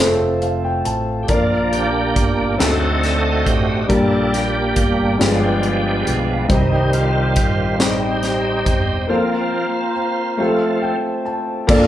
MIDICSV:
0, 0, Header, 1, 6, 480
1, 0, Start_track
1, 0, Tempo, 867052
1, 715, Time_signature, 6, 3, 24, 8
1, 6573, End_track
2, 0, Start_track
2, 0, Title_t, "Brass ensemble"
2, 0, Program_c, 0, 61
2, 0, Note_on_c, 0, 69, 57
2, 0, Note_on_c, 0, 72, 53
2, 0, Note_on_c, 0, 77, 51
2, 0, Note_on_c, 0, 81, 65
2, 692, Note_off_c, 0, 72, 0
2, 698, Note_off_c, 0, 69, 0
2, 698, Note_off_c, 0, 81, 0
2, 705, Note_on_c, 0, 82, 59
2, 706, Note_on_c, 0, 74, 52
2, 708, Note_on_c, 0, 70, 55
2, 1412, Note_off_c, 0, 77, 0
2, 1424, Note_off_c, 0, 82, 0
2, 1425, Note_off_c, 0, 70, 0
2, 1430, Note_on_c, 0, 75, 51
2, 1433, Note_on_c, 0, 78, 60
2, 1435, Note_on_c, 0, 72, 59
2, 2137, Note_off_c, 0, 74, 0
2, 2146, Note_off_c, 0, 75, 0
2, 2148, Note_off_c, 0, 78, 0
2, 2149, Note_off_c, 0, 72, 0
2, 2153, Note_on_c, 0, 58, 52
2, 2153, Note_on_c, 0, 67, 57
2, 2153, Note_on_c, 0, 74, 51
2, 2153, Note_on_c, 0, 79, 68
2, 2868, Note_off_c, 0, 58, 0
2, 2868, Note_off_c, 0, 67, 0
2, 2868, Note_off_c, 0, 74, 0
2, 2883, Note_on_c, 0, 77, 50
2, 2887, Note_on_c, 0, 56, 56
2, 2888, Note_on_c, 0, 71, 52
2, 3593, Note_off_c, 0, 77, 0
2, 3595, Note_off_c, 0, 56, 0
2, 3595, Note_off_c, 0, 71, 0
2, 3600, Note_on_c, 0, 67, 59
2, 3601, Note_on_c, 0, 72, 53
2, 3603, Note_on_c, 0, 75, 55
2, 5011, Note_off_c, 0, 79, 0
2, 5022, Note_off_c, 0, 67, 0
2, 5023, Note_off_c, 0, 75, 0
2, 5045, Note_on_c, 0, 70, 55
2, 5045, Note_on_c, 0, 82, 65
2, 5048, Note_on_c, 0, 77, 51
2, 5733, Note_off_c, 0, 72, 0
2, 5746, Note_off_c, 0, 77, 0
2, 5751, Note_off_c, 0, 70, 0
2, 5751, Note_off_c, 0, 82, 0
2, 5753, Note_on_c, 0, 72, 53
2, 5753, Note_on_c, 0, 77, 48
2, 5754, Note_on_c, 0, 69, 56
2, 5754, Note_on_c, 0, 81, 61
2, 6463, Note_off_c, 0, 69, 0
2, 6463, Note_off_c, 0, 72, 0
2, 6463, Note_off_c, 0, 77, 0
2, 6463, Note_off_c, 0, 81, 0
2, 6573, End_track
3, 0, Start_track
3, 0, Title_t, "Grand piano"
3, 0, Program_c, 1, 0
3, 0, Control_c, 1, 64, 127
3, 0, Note_on_c, 1, 57, 59
3, 0, Note_on_c, 1, 60, 54
3, 0, Note_on_c, 1, 65, 52
3, 0, Note_on_c, 1, 69, 55
3, 0, Note_on_c, 1, 72, 60
3, 232, Note_on_c, 1, 77, 53
3, 344, Note_off_c, 1, 77, 0
3, 356, Note_on_c, 1, 79, 48
3, 455, Note_off_c, 1, 57, 0
3, 457, Note_off_c, 1, 60, 0
3, 460, Note_off_c, 1, 65, 0
3, 460, Note_off_c, 1, 69, 0
3, 462, Note_off_c, 1, 72, 0
3, 467, Note_off_c, 1, 79, 0
3, 471, Note_on_c, 1, 81, 52
3, 696, Note_off_c, 1, 81, 0
3, 706, Note_on_c, 1, 58, 57
3, 708, Note_on_c, 1, 46, 45
3, 709, Note_on_c, 1, 62, 50
3, 709, Note_on_c, 1, 65, 50
3, 715, Note_on_c, 1, 70, 51
3, 716, Note_on_c, 1, 74, 61
3, 722, Control_c, 1, 64, 0
3, 832, Control_c, 1, 64, 127
3, 1177, Note_off_c, 1, 58, 0
3, 1178, Note_off_c, 1, 62, 0
3, 1178, Note_off_c, 1, 65, 0
3, 1181, Note_off_c, 1, 70, 0
3, 1182, Note_off_c, 1, 74, 0
3, 1410, Note_off_c, 1, 46, 0
3, 1422, Note_on_c, 1, 60, 49
3, 1428, Note_on_c, 1, 62, 46
3, 1430, Note_on_c, 1, 50, 44
3, 1432, Note_on_c, 1, 63, 45
3, 1433, Note_on_c, 1, 66, 44
3, 1436, Note_on_c, 1, 69, 55
3, 1444, Control_c, 1, 64, 0
3, 1531, Control_c, 1, 64, 127
3, 1895, Note_off_c, 1, 60, 0
3, 1898, Note_off_c, 1, 62, 0
3, 1900, Note_off_c, 1, 63, 0
3, 1900, Note_off_c, 1, 66, 0
3, 1902, Note_off_c, 1, 69, 0
3, 2131, Note_off_c, 1, 50, 0
3, 2145, Note_on_c, 1, 55, 58
3, 2149, Note_on_c, 1, 58, 53
3, 2152, Note_on_c, 1, 46, 47
3, 2152, Note_on_c, 1, 62, 52
3, 2158, Note_on_c, 1, 67, 55
3, 2158, Note_on_c, 1, 70, 62
3, 2162, Control_c, 1, 64, 0
3, 2257, Control_c, 1, 64, 127
3, 2616, Note_off_c, 1, 55, 0
3, 2619, Note_off_c, 1, 58, 0
3, 2620, Note_off_c, 1, 62, 0
3, 2623, Note_off_c, 1, 67, 0
3, 2623, Note_off_c, 1, 70, 0
3, 2853, Note_off_c, 1, 46, 0
3, 2862, Note_on_c, 1, 56, 50
3, 2867, Note_on_c, 1, 59, 47
3, 2868, Note_on_c, 1, 43, 46
3, 2870, Note_on_c, 1, 62, 46
3, 2872, Note_on_c, 1, 65, 45
3, 2877, Note_on_c, 1, 67, 56
3, 2883, Control_c, 1, 64, 0
3, 2982, Control_c, 1, 64, 127
3, 3335, Note_off_c, 1, 56, 0
3, 3337, Note_off_c, 1, 59, 0
3, 3339, Note_off_c, 1, 62, 0
3, 3340, Note_off_c, 1, 65, 0
3, 3342, Note_off_c, 1, 67, 0
3, 3570, Note_off_c, 1, 43, 0
3, 3586, Note_on_c, 1, 55, 57
3, 3588, Note_on_c, 1, 60, 54
3, 3590, Note_on_c, 1, 48, 46
3, 3591, Note_on_c, 1, 63, 55
3, 3598, Note_on_c, 1, 67, 52
3, 3598, Note_on_c, 1, 72, 62
3, 3604, Control_c, 1, 64, 0
3, 3711, Control_c, 1, 64, 127
3, 4057, Note_off_c, 1, 55, 0
3, 4058, Note_off_c, 1, 60, 0
3, 4059, Note_off_c, 1, 63, 0
3, 4062, Note_off_c, 1, 67, 0
3, 4063, Note_off_c, 1, 72, 0
3, 4291, Note_off_c, 1, 48, 0
3, 4309, Note_on_c, 1, 55, 53
3, 4312, Note_on_c, 1, 60, 49
3, 4316, Note_on_c, 1, 63, 47
3, 4317, Note_on_c, 1, 67, 47
3, 4322, Note_on_c, 1, 72, 57
3, 4778, Note_off_c, 1, 55, 0
3, 4779, Note_off_c, 1, 60, 0
3, 4781, Note_off_c, 1, 63, 0
3, 4781, Note_off_c, 1, 67, 0
3, 4784, Note_off_c, 1, 72, 0
3, 5023, Note_on_c, 1, 58, 58
3, 5026, Note_on_c, 1, 60, 53
3, 5032, Note_on_c, 1, 65, 56
3, 5033, Note_on_c, 1, 69, 42
3, 5037, Note_on_c, 1, 72, 64
3, 5040, Control_c, 1, 64, 0
3, 5069, Note_off_c, 1, 69, 0
3, 5069, Note_on_c, 1, 70, 51
3, 5156, Control_c, 1, 64, 127
3, 5493, Note_off_c, 1, 58, 0
3, 5495, Note_off_c, 1, 60, 0
3, 5498, Note_off_c, 1, 65, 0
3, 5500, Note_off_c, 1, 72, 0
3, 5516, Note_off_c, 1, 70, 0
3, 5742, Note_on_c, 1, 57, 60
3, 5744, Note_on_c, 1, 60, 53
3, 5747, Note_on_c, 1, 65, 55
3, 5750, Note_on_c, 1, 67, 43
3, 5756, Note_on_c, 1, 72, 64
3, 5759, Control_c, 1, 64, 0
3, 5787, Note_off_c, 1, 67, 0
3, 5789, Note_on_c, 1, 69, 53
3, 5840, Control_c, 1, 64, 127
3, 5989, Note_on_c, 1, 79, 53
3, 6212, Note_off_c, 1, 57, 0
3, 6213, Note_off_c, 1, 60, 0
3, 6213, Note_off_c, 1, 79, 0
3, 6214, Note_off_c, 1, 65, 0
3, 6219, Note_off_c, 1, 72, 0
3, 6230, Note_on_c, 1, 81, 48
3, 6235, Note_off_c, 1, 69, 0
3, 6453, Note_off_c, 1, 81, 0
3, 6461, Note_on_c, 1, 58, 81
3, 6462, Note_on_c, 1, 60, 56
3, 6468, Note_on_c, 1, 46, 63
3, 6470, Note_on_c, 1, 65, 77
3, 6471, Note_on_c, 1, 69, 70
3, 6473, Note_on_c, 1, 74, 91
3, 6479, Control_c, 1, 64, 0
3, 6501, Note_on_c, 1, 62, 75
3, 6502, Note_off_c, 1, 60, 0
3, 6569, Control_c, 1, 64, 127
3, 6573, Note_off_c, 1, 46, 0
3, 6573, Note_off_c, 1, 58, 0
3, 6573, Note_off_c, 1, 62, 0
3, 6573, Note_off_c, 1, 65, 0
3, 6573, Note_off_c, 1, 69, 0
3, 6573, Note_off_c, 1, 74, 0
3, 6573, End_track
4, 0, Start_track
4, 0, Title_t, "Tonewheel organ"
4, 0, Program_c, 2, 16
4, 680, Note_on_c, 2, 67, 53
4, 717, Note_off_c, 2, 67, 0
4, 717, Note_on_c, 2, 53, 38
4, 720, Note_on_c, 2, 65, 69
4, 721, Note_on_c, 2, 58, 49
4, 723, Note_on_c, 2, 62, 47
4, 827, Note_off_c, 2, 65, 0
4, 947, Note_off_c, 2, 62, 0
4, 950, Note_off_c, 2, 58, 0
4, 954, Note_on_c, 2, 62, 56
4, 954, Note_on_c, 2, 67, 88
4, 957, Note_on_c, 2, 58, 54
4, 1035, Note_off_c, 2, 53, 0
4, 1413, Note_off_c, 2, 62, 0
4, 1413, Note_off_c, 2, 67, 0
4, 1414, Note_off_c, 2, 58, 0
4, 1427, Note_on_c, 2, 57, 40
4, 1430, Note_on_c, 2, 60, 54
4, 1433, Note_on_c, 2, 69, 77
4, 1433, Note_on_c, 2, 75, 43
4, 1435, Note_on_c, 2, 66, 55
4, 1909, Note_on_c, 2, 67, 69
4, 1929, Note_off_c, 2, 69, 0
4, 2130, Note_off_c, 2, 57, 0
4, 2133, Note_off_c, 2, 75, 0
4, 2134, Note_off_c, 2, 60, 0
4, 2134, Note_off_c, 2, 66, 0
4, 2151, Note_on_c, 2, 55, 38
4, 2153, Note_on_c, 2, 58, 37
4, 2153, Note_on_c, 2, 69, 74
4, 2158, Note_on_c, 2, 62, 55
4, 2160, Note_off_c, 2, 67, 0
4, 2391, Note_off_c, 2, 62, 0
4, 2394, Note_off_c, 2, 58, 0
4, 2396, Note_on_c, 2, 67, 77
4, 2398, Note_on_c, 2, 62, 53
4, 2400, Note_on_c, 2, 58, 56
4, 2402, Note_off_c, 2, 69, 0
4, 2852, Note_off_c, 2, 55, 0
4, 2855, Note_off_c, 2, 62, 0
4, 2857, Note_off_c, 2, 58, 0
4, 2878, Note_off_c, 2, 67, 0
4, 2882, Note_on_c, 2, 53, 40
4, 2883, Note_on_c, 2, 56, 38
4, 2885, Note_on_c, 2, 62, 51
4, 2885, Note_on_c, 2, 67, 70
4, 2886, Note_on_c, 2, 59, 49
4, 3398, Note_off_c, 2, 67, 0
4, 3577, Note_off_c, 2, 53, 0
4, 3578, Note_off_c, 2, 56, 0
4, 3579, Note_off_c, 2, 62, 0
4, 3581, Note_off_c, 2, 59, 0
4, 3599, Note_on_c, 2, 51, 42
4, 3605, Note_on_c, 2, 55, 51
4, 3606, Note_on_c, 2, 60, 47
4, 3606, Note_on_c, 2, 63, 69
4, 3825, Note_off_c, 2, 63, 0
4, 3828, Note_off_c, 2, 60, 0
4, 3835, Note_on_c, 2, 60, 55
4, 3837, Note_on_c, 2, 65, 73
4, 4295, Note_off_c, 2, 51, 0
4, 4301, Note_off_c, 2, 55, 0
4, 4309, Note_off_c, 2, 60, 0
4, 4315, Note_on_c, 2, 63, 50
4, 4316, Note_on_c, 2, 60, 52
4, 4320, Note_on_c, 2, 67, 72
4, 4330, Note_off_c, 2, 65, 0
4, 5012, Note_off_c, 2, 60, 0
4, 5012, Note_off_c, 2, 63, 0
4, 5014, Note_off_c, 2, 67, 0
4, 5026, Note_on_c, 2, 53, 42
4, 5030, Note_on_c, 2, 58, 37
4, 5033, Note_on_c, 2, 60, 44
4, 5036, Note_on_c, 2, 65, 59
4, 5349, Note_off_c, 2, 53, 0
4, 5351, Note_off_c, 2, 58, 0
4, 5749, Note_on_c, 2, 53, 39
4, 5749, Note_on_c, 2, 57, 37
4, 5752, Note_off_c, 2, 60, 0
4, 5758, Note_on_c, 2, 60, 44
4, 5970, Note_off_c, 2, 65, 0
4, 6069, Note_off_c, 2, 53, 0
4, 6069, Note_off_c, 2, 57, 0
4, 6074, Note_off_c, 2, 60, 0
4, 6462, Note_on_c, 2, 53, 68
4, 6463, Note_on_c, 2, 58, 61
4, 6464, Note_on_c, 2, 65, 69
4, 6465, Note_on_c, 2, 62, 60
4, 6573, Note_off_c, 2, 53, 0
4, 6573, Note_off_c, 2, 58, 0
4, 6573, Note_off_c, 2, 62, 0
4, 6573, Note_off_c, 2, 65, 0
4, 6573, End_track
5, 0, Start_track
5, 0, Title_t, "Fingered electric bass"
5, 0, Program_c, 3, 33
5, 0, Note_on_c, 3, 29, 75
5, 454, Note_off_c, 3, 29, 0
5, 477, Note_on_c, 3, 33, 61
5, 697, Note_off_c, 3, 33, 0
5, 715, Note_on_c, 3, 34, 73
5, 1173, Note_off_c, 3, 34, 0
5, 1197, Note_on_c, 3, 31, 66
5, 1417, Note_off_c, 3, 31, 0
5, 1440, Note_on_c, 3, 38, 78
5, 1896, Note_off_c, 3, 38, 0
5, 1918, Note_on_c, 3, 33, 55
5, 2138, Note_off_c, 3, 33, 0
5, 2157, Note_on_c, 3, 34, 76
5, 2615, Note_off_c, 3, 34, 0
5, 2638, Note_on_c, 3, 31, 70
5, 2858, Note_off_c, 3, 31, 0
5, 2880, Note_on_c, 3, 31, 82
5, 3336, Note_off_c, 3, 31, 0
5, 3360, Note_on_c, 3, 35, 65
5, 3579, Note_off_c, 3, 35, 0
5, 3600, Note_on_c, 3, 36, 83
5, 4079, Note_off_c, 3, 36, 0
5, 4079, Note_on_c, 3, 33, 65
5, 4774, Note_off_c, 3, 33, 0
5, 4797, Note_on_c, 3, 28, 64
5, 5016, Note_off_c, 3, 28, 0
5, 6471, Note_on_c, 3, 34, 96
5, 6573, Note_off_c, 3, 34, 0
5, 6573, End_track
6, 0, Start_track
6, 0, Title_t, "Drums"
6, 232, Note_on_c, 9, 42, 33
6, 287, Note_off_c, 9, 42, 0
6, 473, Note_on_c, 9, 42, 46
6, 528, Note_off_c, 9, 42, 0
6, 711, Note_on_c, 9, 42, 63
6, 714, Note_on_c, 9, 36, 74
6, 766, Note_off_c, 9, 42, 0
6, 769, Note_off_c, 9, 36, 0
6, 957, Note_on_c, 9, 42, 45
6, 1012, Note_off_c, 9, 42, 0
6, 1197, Note_on_c, 9, 36, 67
6, 1197, Note_on_c, 9, 42, 60
6, 1252, Note_off_c, 9, 36, 0
6, 1252, Note_off_c, 9, 42, 0
6, 1441, Note_on_c, 9, 42, 75
6, 1442, Note_on_c, 9, 38, 93
6, 1497, Note_off_c, 9, 38, 0
6, 1497, Note_off_c, 9, 42, 0
6, 1680, Note_on_c, 9, 42, 34
6, 1685, Note_on_c, 9, 38, 26
6, 1735, Note_off_c, 9, 42, 0
6, 1740, Note_off_c, 9, 38, 0
6, 1918, Note_on_c, 9, 36, 65
6, 1922, Note_on_c, 9, 42, 45
6, 1974, Note_off_c, 9, 36, 0
6, 1977, Note_off_c, 9, 42, 0
6, 2158, Note_on_c, 9, 36, 76
6, 2159, Note_on_c, 9, 42, 61
6, 2213, Note_off_c, 9, 36, 0
6, 2215, Note_off_c, 9, 42, 0
6, 2403, Note_on_c, 9, 42, 44
6, 2405, Note_on_c, 9, 38, 28
6, 2458, Note_off_c, 9, 42, 0
6, 2461, Note_off_c, 9, 38, 0
6, 2636, Note_on_c, 9, 42, 59
6, 2638, Note_on_c, 9, 36, 71
6, 2692, Note_off_c, 9, 42, 0
6, 2694, Note_off_c, 9, 36, 0
6, 2884, Note_on_c, 9, 38, 89
6, 2884, Note_on_c, 9, 42, 75
6, 2939, Note_off_c, 9, 38, 0
6, 2939, Note_off_c, 9, 42, 0
6, 3117, Note_on_c, 9, 42, 33
6, 3173, Note_off_c, 9, 42, 0
6, 3361, Note_on_c, 9, 42, 48
6, 3416, Note_off_c, 9, 42, 0
6, 3597, Note_on_c, 9, 36, 79
6, 3597, Note_on_c, 9, 42, 65
6, 3652, Note_off_c, 9, 36, 0
6, 3652, Note_off_c, 9, 42, 0
6, 3838, Note_on_c, 9, 42, 46
6, 3893, Note_off_c, 9, 42, 0
6, 4074, Note_on_c, 9, 42, 59
6, 4078, Note_on_c, 9, 36, 71
6, 4129, Note_off_c, 9, 42, 0
6, 4133, Note_off_c, 9, 36, 0
6, 4318, Note_on_c, 9, 38, 85
6, 4318, Note_on_c, 9, 42, 75
6, 4373, Note_off_c, 9, 38, 0
6, 4373, Note_off_c, 9, 42, 0
6, 4555, Note_on_c, 9, 42, 33
6, 4560, Note_on_c, 9, 38, 28
6, 4610, Note_off_c, 9, 42, 0
6, 4615, Note_off_c, 9, 38, 0
6, 4796, Note_on_c, 9, 36, 67
6, 4797, Note_on_c, 9, 42, 45
6, 4851, Note_off_c, 9, 36, 0
6, 4852, Note_off_c, 9, 42, 0
6, 6470, Note_on_c, 9, 36, 98
6, 6471, Note_on_c, 9, 49, 85
6, 6526, Note_off_c, 9, 36, 0
6, 6526, Note_off_c, 9, 49, 0
6, 6573, End_track
0, 0, End_of_file